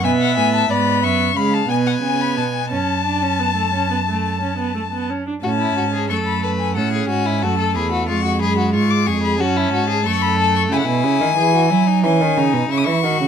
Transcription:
0.04 B2 B3 E5 G#5
0.21 F#5
0.37 A2 G#5
0.54 A5
0.70 G#2 B3 D5 B5
1.03 F#2 E5 C#6
1.36 C#3 G#3 F5 B5
1.53 A5
1.70 B2 B3 G#5
1.86 F#5
2.03 C#3 G#5
2.21 B5
2.38 B2 A5
2.54 G#5
2.71 F#2 C#4 A5
3.06 D4
3.22 C#4
3.39 B3
3.56 A3
3.73 C#4
3.91 B3
4.08 A3
4.42 C#4
4.58 B3
4.75 A3
4.92 B3
5.10 C#4
5.27 D4
5.43 A2 C#4 F#4 A5
5.60 E4
5.77 G#2 F#4
5.94 G#4
6.09 F#2 A3 A4 C#6
6.26 B5
6.43 B4 A5
6.59 G#5
6.76 A2 C#4 A4 F#5
6.93 G#4
7.09 G#2 F#4 G#5
7.26 E4
7.42 F#2 A3 F#4 A5
7.59 A4
7.75 E2 G#4 B5
7.92 F#4
8.08 F2 G#3 F4 C#6
8.25 F#4
8.42 F#2 G#4 B5
8.58 F#4
8.74 G#2 F4 C#6
8.90 D6
9.06 F2 G#4 C#6
9.23 B5
9.39 F#2 C#4 F#4 A5
9.57 E4
9.73 G#2 F#4
9.89 G#4
10.05 F#2 A3 A4 C#6
10.22 B5
10.39 A5
10.56 C#6
10.71 C#3 E4 G#5
10.78 F#5
10.85 B2 G#5
11.04 C#3
11.21 D#3
11.37 E3 G#4
11.55 F#4
11.71 F#3 E4
11.87 D#4
12.04 E3 C#4 G#5
12.21 D#3
12.37 C#3 D#4
12.54 B2
12.70 C#3 E4 C#6
12.77 D#6
12.84 E3 C#6
13.03 D#3 F#4
13.21 C#3

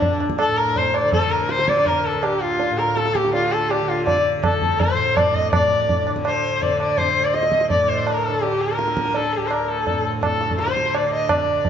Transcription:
Already playing: D2 A2 D3 D4
0.02 tabla tin, tabla ge
0.20 tabla na
0.30 tabla ke
0.39 A4, tabla na
0.47 A2 A4
0.57 A#4
0.76 C5, tabla tin, tabla ge
0.85 C5
0.94 D5, tabla na
1.04 D3
1.12 A4, tabla tin, tabla ge
1.22 A4
1.30 A#4
1.40 A#4
1.49 C5, tabla te
1.59 D3 C5, tabla te
1.68 D5, tabla ke
1.77 D5, tabla te
1.86 A#4, tabla tin, tabla ge
1.94 A#4
2.05 A4
2.15 D2
2.23 G4, tabla na
2.32 G4
2.40 F4
2.50 F4
2.60 tabla tin
2.71 A2
2.78 A#4
2.96 A4, tabla te
3.06 A4, tabla te
3.15 G4, tabla ke
3.24 D3 G4, tabla te
3.34 F4, tabla tin
3.42 F4
3.52 A4
3.70 G4, tabla na
3.80 D3 G4
3.88 F4
3.97 F4
4.06 D5, tabla tin, tabla ge
4.15 D5
4.38 D2
4.43 A4, tabla na, tabla ge
4.52 A4
4.62 tabla ge
4.80 C5, tabla tin, tabla ge
4.89 C5
4.94 A2
5.16 D5, tabla na, tabla ge
5.26 D5
5.34 D#5, tabla ge
5.52 A2 D5, tabla na, tabla ge
5.63 D5
5.89 tabla tin, tabla ge
6.07 D3, tabla na
6.16 tabla ke
6.25 C5, tabla na
6.35 C5
6.62 D3 D5, tabla tin, tabla ge
6.71 D5
6.80 D5, tabla na
6.88 D5
6.98 C5, tabla tin, tabla ge
7.06 C5
7.18 D2
7.24 D5
7.34 D#5, tabla te
7.42 D#5, tabla te
7.52 tabla ke
7.61 tabla te
7.70 A2 D5, tabla tin, tabla ge
7.79 D5
7.88 C5
8.06 A#4, tabla na
8.16 A#4
8.24 A4
8.29 D3
8.33 A4
8.42 G4, tabla tin
8.52 G4
8.61 A#4
8.69 A#4
8.79 D3, tabla te
8.88 tabla te
8.97 tabla ke
9.05 tabla te
9.14 A4, tabla tin
9.24 A4
9.33 G4
9.37 D2
9.46 C5
9.51 A#4, tabla na
9.59 A#4
9.68 A4
9.77 A4
9.87 tabla tin, tabla ge
9.93 A2
10.22 A4, tabla na, tabla ge
10.31 A4
10.41 tabla te
10.47 D3, tabla ge
10.59 C5 D5, tabla te
10.67 C5, tabla te
10.77 tabla ke
10.85 tabla te
10.95 D5, tabla na
11.01 D3 D5
11.13 D#5
11.29 D5, tabla na, tabla ge
11.38 D5
11.55 D2
11.65 tabla tin, tabla ge

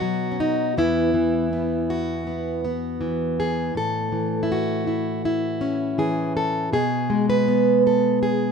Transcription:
Already playing: B2 B3 D#4 F#4
0.01 F#3
0.32 C#4
0.40 D#4
0.77 E2 E3 B3 E4
1.14 E3
1.53 B3
1.90 F#4
2.27 B3
2.65 B3
3.01 E3
3.40 G#4
3.75 A2 A4
4.12 E3
4.43 E4
4.52 F#4
4.87 E4
5.25 E4
5.61 C#4
5.98 E3 G#4
6.37 A4
6.73 B2 G#4
7.10 G#3
7.30 B4
7.48 B3
7.87 A4
8.23 G#4

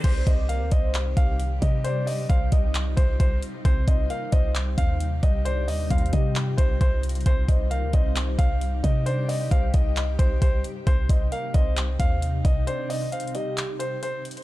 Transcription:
0.04 C2 C3 G3 D#4 C5, kick, closed hi-hat, crash
0.27 C2 D#5, kick, closed hi-hat
0.49 A#4 F5, closed hi-hat
0.61 D2
0.71 C2 C5 D#5, kick, closed hi-hat
0.94 clap, closed hi-hat
1.17 C2 F5, kick, closed hi-hat
1.40 closed hi-hat
1.62 C3 D#5, kick, closed hi-hat
1.84 C5 D5, closed hi-hat
2.07 D#5, open hi-hat
2.29 C2 C5 F5, kick, closed hi-hat
2.52 C2 D#5, kick, closed hi-hat
2.75 clap, closed hi-hat
2.97 C2 C5, kick, closed hi-hat
3.20 C2 C5, kick, closed hi-hat
3.42 closed hi-hat
3.65 C2 G3 C5, kick, closed hi-hat
3.88 C2 D#5, kick, closed hi-hat
4.10 A#4 F5, closed hi-hat
4.32 C2 C5 D#5, kick, closed hi-hat
4.55 clap, closed hi-hat
4.78 D#2 F5, kick, closed hi-hat
5.00 closed hi-hat
5.23 C2 D#5, kick, closed hi-hat
5.45 C5 D5, closed hi-hat
5.68 D#2 D#5, open hi-hat
5.90 D#2 C5 F5, kick, closed hi-hat
5.98 closed hi-hat
6.06 closed hi-hat
6.13 C3 G4 D#5, kick, closed hi-hat
6.36 clap, closed hi-hat
6.58 C2 C5, kick, closed hi-hat
6.81 C2 C5, kick, closed hi-hat
7.03 closed hi-hat
7.09 closed hi-hat
7.15 closed hi-hat
7.21 closed hi-hat
7.26 C2 G4 C5, kick, closed hi-hat
7.48 C2 D#5, kick, closed hi-hat
7.71 A#4 F5, closed hi-hat
7.83 D2
7.93 C2 C5 D#5, kick, closed hi-hat
8.16 clap, closed hi-hat
8.38 C2 F5, kick, closed hi-hat
8.61 closed hi-hat
8.84 C3 D#5, kick, closed hi-hat
9.06 C5 D5, closed hi-hat
9.29 D#5, open hi-hat
9.51 C2 C5 F5, kick, closed hi-hat
9.74 C2 D#5, kick, closed hi-hat
9.97 clap, closed hi-hat
10.19 C2 C5, kick, closed hi-hat
10.42 C2 C5, kick, closed hi-hat
10.64 closed hi-hat
10.87 C2 C3 D#4 C5, kick, closed hi-hat
11.09 C2 D#5, kick, closed hi-hat
11.32 A#4 F5, closed hi-hat
11.54 C2 C5 D#5, kick, closed hi-hat
11.77 clap, closed hi-hat
12.00 D#2 F5, kick, closed hi-hat
12.22 closed hi-hat
12.45 C2 D#5, kick, closed hi-hat
12.67 C5 D5, closed hi-hat
12.90 D#5, open hi-hat
13.12 C5 F5, closed hi-hat
13.20 closed hi-hat
13.27 closed hi-hat
13.35 G4 D#5, closed hi-hat
13.58 clap, closed hi-hat
13.79 C5, closed hi-hat
14.03 C5, closed hi-hat
14.25 closed hi-hat
14.31 closed hi-hat
14.37 closed hi-hat

